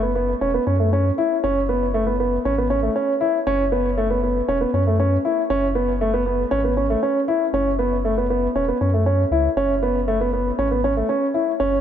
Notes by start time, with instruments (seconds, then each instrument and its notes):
Already playing: sub bass F#1
0.02 grand piano B3
0.15 grand piano B3
0.41 sub bass E1, grand piano C#4
0.54 grand piano B3
0.67 sub bass F#2, grand piano C#4
0.80 grand piano A3
0.93 grand piano C#4
1.18 grand piano E4
1.44 sub bass F#1, grand piano C#4
1.69 grand piano B3
1.94 grand piano A3
2.07 grand piano B3
2.20 grand piano B3
2.45 sub bass G#1, grand piano C#4
2.58 grand piano B3
2.70 grand piano C#4
2.83 grand piano A3
2.96 grand piano C#4
3.21 grand piano E4
3.47 sub bass F#1, grand piano C#4
3.72 grand piano B3
3.97 grand piano A3
4.10 grand piano B3
4.23 grand piano B3
4.48 sub bass E1, grand piano C#4
4.61 grand piano B3
4.73 sub bass F#2, grand piano C#4
4.87 grand piano A3
5.00 grand piano C#4
5.25 grand piano E4
5.50 sub bass F#1, grand piano C#4
5.75 grand piano B3
6.01 grand piano A3
6.14 grand piano B3
6.26 grand piano B3
6.51 sub bass G#1, grand piano C#4
6.64 grand piano B3
6.77 grand piano C#4
6.90 grand piano A3
7.03 grand piano C#4
7.28 grand piano E4
7.53 sub bass F#1, grand piano C#4
7.79 grand piano B3
8.05 grand piano A3
8.18 grand piano B3
8.30 grand piano B3
8.55 sub bass E1, grand piano C#4
8.68 grand piano B3
8.81 sub bass F#2, grand piano C#4
8.94 grand piano A3
9.06 grand piano C#4
9.31 sub bass C#2, grand piano E4
9.56 sub bass F#1, grand piano C#4
9.83 grand piano B3
10.08 grand piano A3
10.21 grand piano B3
10.33 grand piano B3
10.58 sub bass G#1, grand piano C#4
10.71 grand piano B3
10.84 grand piano C#4
10.97 grand piano A3
11.09 grand piano C#4
11.34 grand piano E4
11.60 sub bass F#1, grand piano C#4